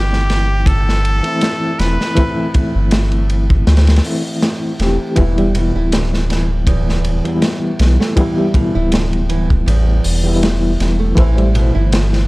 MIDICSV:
0, 0, Header, 1, 6, 480
1, 0, Start_track
1, 0, Key_signature, 1, "minor"
1, 0, Tempo, 750000
1, 1391, Time_signature, 4, 2, 24, 8
1, 7857, End_track
2, 0, Start_track
2, 0, Title_t, "Muted trumpet"
2, 0, Program_c, 0, 59
2, 0, Note_on_c, 0, 67, 93
2, 426, Note_on_c, 0, 69, 94
2, 435, Note_off_c, 0, 67, 0
2, 1148, Note_on_c, 0, 71, 92
2, 1158, Note_off_c, 0, 69, 0
2, 1630, Note_off_c, 0, 71, 0
2, 7857, End_track
3, 0, Start_track
3, 0, Title_t, "Reed electric piano"
3, 0, Program_c, 1, 4
3, 0, Control_c, 1, 64, 127
3, 0, Note_on_c, 1, 52, 83
3, 0, Note_on_c, 1, 57, 76
3, 0, Note_on_c, 1, 60, 81
3, 0, Note_on_c, 1, 64, 90
3, 766, Note_off_c, 1, 52, 0
3, 771, Note_off_c, 1, 57, 0
3, 776, Note_off_c, 1, 60, 0
3, 779, Note_off_c, 1, 64, 0
3, 787, Note_on_c, 1, 52, 76
3, 797, Note_on_c, 1, 57, 70
3, 807, Note_on_c, 1, 60, 73
3, 816, Note_on_c, 1, 64, 89
3, 1358, Note_off_c, 1, 52, 0
3, 1362, Note_off_c, 1, 57, 0
3, 1367, Note_off_c, 1, 60, 0
3, 1372, Note_off_c, 1, 64, 0
3, 1376, Note_on_c, 1, 52, 81
3, 1386, Note_on_c, 1, 57, 73
3, 1394, Note_on_c, 1, 60, 74
3, 1402, Note_on_c, 1, 64, 93
3, 2562, Note_off_c, 1, 52, 0
3, 2567, Note_off_c, 1, 57, 0
3, 2571, Note_off_c, 1, 60, 0
3, 2575, Note_off_c, 1, 64, 0
3, 2587, Note_on_c, 1, 52, 64
3, 2594, Note_on_c, 1, 57, 59
3, 2597, Note_on_c, 1, 60, 61
3, 2602, Note_on_c, 1, 64, 73
3, 3043, Note_off_c, 1, 52, 0
3, 3047, Note_off_c, 1, 57, 0
3, 3049, Note_off_c, 1, 60, 0
3, 3051, Note_off_c, 1, 64, 0
3, 3070, Note_on_c, 1, 52, 65
3, 3074, Note_on_c, 1, 57, 59
3, 3077, Note_on_c, 1, 60, 62
3, 3082, Note_on_c, 1, 67, 74
3, 3285, Note_off_c, 1, 52, 0
3, 3287, Note_off_c, 1, 57, 0
3, 3289, Note_off_c, 1, 60, 0
3, 3291, Note_off_c, 1, 67, 0
3, 3303, Note_on_c, 1, 52, 85
3, 3312, Note_on_c, 1, 55, 75
3, 3320, Control_c, 1, 64, 0
3, 3321, Note_on_c, 1, 59, 72
3, 3331, Note_on_c, 1, 64, 89
3, 3440, Control_c, 1, 64, 127
3, 4607, Note_off_c, 1, 52, 0
3, 4612, Note_off_c, 1, 55, 0
3, 4617, Note_off_c, 1, 59, 0
3, 4621, Note_off_c, 1, 64, 0
3, 4635, Note_on_c, 1, 52, 81
3, 4642, Note_on_c, 1, 55, 70
3, 4652, Note_on_c, 1, 59, 74
3, 4660, Note_on_c, 1, 64, 84
3, 5201, Note_off_c, 1, 52, 0
3, 5205, Note_off_c, 1, 55, 0
3, 5210, Note_off_c, 1, 59, 0
3, 5214, Note_off_c, 1, 64, 0
3, 5222, Note_on_c, 1, 52, 85
3, 5232, Note_on_c, 1, 55, 79
3, 5240, Note_on_c, 1, 59, 73
3, 5250, Note_on_c, 1, 64, 96
3, 6527, Note_off_c, 1, 52, 0
3, 6532, Note_off_c, 1, 55, 0
3, 6536, Note_off_c, 1, 59, 0
3, 6541, Note_off_c, 1, 64, 0
3, 6553, Note_on_c, 1, 52, 84
3, 6563, Note_on_c, 1, 55, 80
3, 6573, Note_on_c, 1, 59, 81
3, 6581, Note_on_c, 1, 64, 96
3, 7121, Note_off_c, 1, 52, 0
3, 7125, Note_off_c, 1, 55, 0
3, 7131, Note_off_c, 1, 59, 0
3, 7135, Note_off_c, 1, 64, 0
3, 7139, Note_on_c, 1, 52, 88
3, 7148, Note_on_c, 1, 57, 79
3, 7159, Note_on_c, 1, 72, 78
3, 7161, Control_c, 1, 64, 0
3, 7169, Note_on_c, 1, 64, 95
3, 7288, Control_c, 1, 64, 127
3, 7857, Note_off_c, 1, 52, 0
3, 7857, Note_off_c, 1, 57, 0
3, 7857, Note_off_c, 1, 64, 0
3, 7857, Note_off_c, 1, 72, 0
3, 7857, End_track
4, 0, Start_track
4, 0, Title_t, "Nylon-string guitar"
4, 0, Program_c, 2, 24
4, 3308, Note_on_c, 2, 52, 69
4, 3428, Note_off_c, 2, 52, 0
4, 3443, Note_on_c, 2, 55, 70
4, 3546, Note_off_c, 2, 55, 0
4, 3551, Note_on_c, 2, 47, 69
4, 3676, Note_off_c, 2, 47, 0
4, 3685, Note_on_c, 2, 64, 74
4, 3782, Note_off_c, 2, 64, 0
4, 3791, Note_on_c, 2, 50, 65
4, 3867, Note_off_c, 2, 50, 0
4, 4028, Note_on_c, 2, 52, 67
4, 4155, Note_off_c, 2, 52, 0
4, 4268, Note_on_c, 2, 40, 78
4, 4739, Note_off_c, 2, 40, 0
4, 5120, Note_on_c, 2, 57, 72
4, 5225, Note_off_c, 2, 57, 0
4, 5228, Note_on_c, 2, 52, 72
4, 5348, Note_off_c, 2, 52, 0
4, 5362, Note_on_c, 2, 55, 76
4, 5466, Note_off_c, 2, 55, 0
4, 5470, Note_on_c, 2, 47, 70
4, 5596, Note_off_c, 2, 47, 0
4, 5601, Note_on_c, 2, 64, 72
4, 5699, Note_off_c, 2, 64, 0
4, 5709, Note_on_c, 2, 50, 74
4, 5785, Note_off_c, 2, 50, 0
4, 5947, Note_on_c, 2, 52, 67
4, 6074, Note_off_c, 2, 52, 0
4, 6184, Note_on_c, 2, 40, 74
4, 6657, Note_off_c, 2, 40, 0
4, 7037, Note_on_c, 2, 57, 73
4, 7143, Note_off_c, 2, 57, 0
4, 7147, Note_on_c, 2, 52, 72
4, 7268, Note_off_c, 2, 52, 0
4, 7278, Note_on_c, 2, 55, 75
4, 7384, Note_off_c, 2, 55, 0
4, 7388, Note_on_c, 2, 47, 70
4, 7515, Note_off_c, 2, 47, 0
4, 7518, Note_on_c, 2, 64, 80
4, 7618, Note_off_c, 2, 64, 0
4, 7629, Note_on_c, 2, 50, 74
4, 7705, Note_off_c, 2, 50, 0
4, 7857, End_track
5, 0, Start_track
5, 0, Title_t, "Analog synth bass"
5, 0, Program_c, 3, 38
5, 0, Note_on_c, 3, 31, 73
5, 776, Note_off_c, 3, 31, 0
5, 1149, Note_on_c, 3, 28, 79
5, 1266, Note_off_c, 3, 28, 0
5, 1762, Note_on_c, 3, 31, 76
5, 2330, Note_off_c, 3, 31, 0
5, 2350, Note_on_c, 3, 38, 90
5, 2565, Note_off_c, 3, 38, 0
5, 3070, Note_on_c, 3, 28, 72
5, 3187, Note_off_c, 3, 28, 0
5, 3310, Note_on_c, 3, 28, 95
5, 3657, Note_off_c, 3, 28, 0
5, 3682, Note_on_c, 3, 26, 78
5, 4618, Note_off_c, 3, 26, 0
5, 4990, Note_on_c, 3, 35, 83
5, 5107, Note_off_c, 3, 35, 0
5, 5604, Note_on_c, 3, 26, 73
5, 6171, Note_off_c, 3, 26, 0
5, 6190, Note_on_c, 3, 33, 93
5, 6405, Note_off_c, 3, 33, 0
5, 6433, Note_on_c, 3, 28, 84
5, 6892, Note_off_c, 3, 28, 0
5, 6913, Note_on_c, 3, 28, 90
5, 7126, Note_off_c, 3, 28, 0
5, 7150, Note_on_c, 3, 33, 94
5, 7497, Note_off_c, 3, 33, 0
5, 7524, Note_on_c, 3, 31, 80
5, 7857, Note_off_c, 3, 31, 0
5, 7857, End_track
6, 0, Start_track
6, 0, Title_t, "Drums"
6, 82, Note_on_c, 9, 38, 35
6, 146, Note_off_c, 9, 38, 0
6, 190, Note_on_c, 9, 51, 54
6, 193, Note_on_c, 9, 38, 44
6, 254, Note_off_c, 9, 51, 0
6, 257, Note_off_c, 9, 38, 0
6, 423, Note_on_c, 9, 36, 110
6, 429, Note_on_c, 9, 51, 78
6, 487, Note_off_c, 9, 36, 0
6, 493, Note_off_c, 9, 51, 0
6, 569, Note_on_c, 9, 38, 37
6, 633, Note_off_c, 9, 38, 0
6, 670, Note_on_c, 9, 51, 55
6, 734, Note_off_c, 9, 51, 0
6, 793, Note_on_c, 9, 51, 37
6, 857, Note_off_c, 9, 51, 0
6, 904, Note_on_c, 9, 51, 79
6, 914, Note_on_c, 9, 38, 92
6, 968, Note_off_c, 9, 51, 0
6, 978, Note_off_c, 9, 38, 0
6, 1148, Note_on_c, 9, 51, 60
6, 1153, Note_on_c, 9, 38, 48
6, 1212, Note_off_c, 9, 51, 0
6, 1217, Note_off_c, 9, 38, 0
6, 1285, Note_on_c, 9, 38, 40
6, 1349, Note_off_c, 9, 38, 0
6, 1385, Note_on_c, 9, 51, 83
6, 1392, Note_on_c, 9, 36, 102
6, 1449, Note_off_c, 9, 51, 0
6, 1456, Note_off_c, 9, 36, 0
6, 1627, Note_on_c, 9, 51, 64
6, 1631, Note_on_c, 9, 36, 93
6, 1691, Note_off_c, 9, 51, 0
6, 1695, Note_off_c, 9, 36, 0
6, 1863, Note_on_c, 9, 51, 75
6, 1871, Note_on_c, 9, 38, 102
6, 1927, Note_off_c, 9, 51, 0
6, 1935, Note_off_c, 9, 38, 0
6, 1994, Note_on_c, 9, 51, 34
6, 2058, Note_off_c, 9, 51, 0
6, 2109, Note_on_c, 9, 51, 56
6, 2173, Note_off_c, 9, 51, 0
6, 2241, Note_on_c, 9, 36, 85
6, 2305, Note_off_c, 9, 36, 0
6, 2349, Note_on_c, 9, 51, 61
6, 2350, Note_on_c, 9, 38, 86
6, 2412, Note_off_c, 9, 51, 0
6, 2412, Note_on_c, 9, 51, 58
6, 2414, Note_off_c, 9, 38, 0
6, 2415, Note_on_c, 9, 38, 87
6, 2476, Note_off_c, 9, 51, 0
6, 2478, Note_on_c, 9, 51, 55
6, 2479, Note_off_c, 9, 38, 0
6, 2486, Note_on_c, 9, 38, 71
6, 2536, Note_off_c, 9, 51, 0
6, 2536, Note_on_c, 9, 51, 59
6, 2545, Note_off_c, 9, 38, 0
6, 2545, Note_on_c, 9, 38, 73
6, 2587, Note_on_c, 9, 46, 67
6, 2600, Note_off_c, 9, 51, 0
6, 2609, Note_off_c, 9, 38, 0
6, 2651, Note_off_c, 9, 46, 0
6, 2832, Note_on_c, 9, 38, 100
6, 2833, Note_on_c, 9, 51, 82
6, 2896, Note_off_c, 9, 38, 0
6, 2897, Note_off_c, 9, 51, 0
6, 3069, Note_on_c, 9, 51, 67
6, 3080, Note_on_c, 9, 38, 36
6, 3133, Note_off_c, 9, 51, 0
6, 3144, Note_off_c, 9, 38, 0
6, 3303, Note_on_c, 9, 51, 76
6, 3311, Note_on_c, 9, 36, 107
6, 3367, Note_off_c, 9, 51, 0
6, 3375, Note_off_c, 9, 36, 0
6, 3442, Note_on_c, 9, 51, 37
6, 3506, Note_off_c, 9, 51, 0
6, 3550, Note_on_c, 9, 51, 67
6, 3614, Note_off_c, 9, 51, 0
6, 3790, Note_on_c, 9, 51, 80
6, 3797, Note_on_c, 9, 38, 100
6, 3854, Note_off_c, 9, 51, 0
6, 3861, Note_off_c, 9, 38, 0
6, 3929, Note_on_c, 9, 38, 36
6, 3993, Note_off_c, 9, 38, 0
6, 4032, Note_on_c, 9, 51, 62
6, 4042, Note_on_c, 9, 38, 41
6, 4096, Note_off_c, 9, 51, 0
6, 4106, Note_off_c, 9, 38, 0
6, 4267, Note_on_c, 9, 36, 106
6, 4268, Note_on_c, 9, 51, 86
6, 4331, Note_off_c, 9, 36, 0
6, 4332, Note_off_c, 9, 51, 0
6, 4411, Note_on_c, 9, 38, 35
6, 4475, Note_off_c, 9, 38, 0
6, 4509, Note_on_c, 9, 51, 59
6, 4573, Note_off_c, 9, 51, 0
6, 4641, Note_on_c, 9, 51, 38
6, 4705, Note_off_c, 9, 51, 0
6, 4749, Note_on_c, 9, 51, 70
6, 4751, Note_on_c, 9, 38, 109
6, 4813, Note_off_c, 9, 51, 0
6, 4815, Note_off_c, 9, 38, 0
6, 4988, Note_on_c, 9, 51, 67
6, 4998, Note_on_c, 9, 38, 46
6, 5052, Note_off_c, 9, 51, 0
6, 5062, Note_off_c, 9, 38, 0
6, 5128, Note_on_c, 9, 38, 37
6, 5192, Note_off_c, 9, 38, 0
6, 5227, Note_on_c, 9, 36, 105
6, 5229, Note_on_c, 9, 51, 84
6, 5291, Note_off_c, 9, 36, 0
6, 5293, Note_off_c, 9, 51, 0
6, 5467, Note_on_c, 9, 36, 90
6, 5469, Note_on_c, 9, 51, 65
6, 5531, Note_off_c, 9, 36, 0
6, 5533, Note_off_c, 9, 51, 0
6, 5708, Note_on_c, 9, 51, 75
6, 5720, Note_on_c, 9, 38, 103
6, 5772, Note_off_c, 9, 51, 0
6, 5784, Note_off_c, 9, 38, 0
6, 5842, Note_on_c, 9, 51, 36
6, 5906, Note_off_c, 9, 51, 0
6, 5949, Note_on_c, 9, 51, 55
6, 6013, Note_off_c, 9, 51, 0
6, 6082, Note_on_c, 9, 36, 79
6, 6146, Note_off_c, 9, 36, 0
6, 6193, Note_on_c, 9, 51, 84
6, 6257, Note_off_c, 9, 51, 0
6, 6428, Note_on_c, 9, 46, 65
6, 6492, Note_off_c, 9, 46, 0
6, 6674, Note_on_c, 9, 51, 75
6, 6678, Note_on_c, 9, 38, 110
6, 6738, Note_off_c, 9, 51, 0
6, 6742, Note_off_c, 9, 38, 0
6, 6913, Note_on_c, 9, 51, 62
6, 6918, Note_on_c, 9, 38, 39
6, 6977, Note_off_c, 9, 51, 0
6, 6982, Note_off_c, 9, 38, 0
6, 7148, Note_on_c, 9, 36, 104
6, 7152, Note_on_c, 9, 51, 89
6, 7212, Note_off_c, 9, 36, 0
6, 7216, Note_off_c, 9, 51, 0
6, 7284, Note_on_c, 9, 51, 36
6, 7348, Note_off_c, 9, 51, 0
6, 7392, Note_on_c, 9, 51, 66
6, 7456, Note_off_c, 9, 51, 0
6, 7632, Note_on_c, 9, 51, 80
6, 7638, Note_on_c, 9, 38, 113
6, 7696, Note_off_c, 9, 51, 0
6, 7702, Note_off_c, 9, 38, 0
6, 7764, Note_on_c, 9, 38, 34
6, 7828, Note_off_c, 9, 38, 0
6, 7857, End_track
0, 0, End_of_file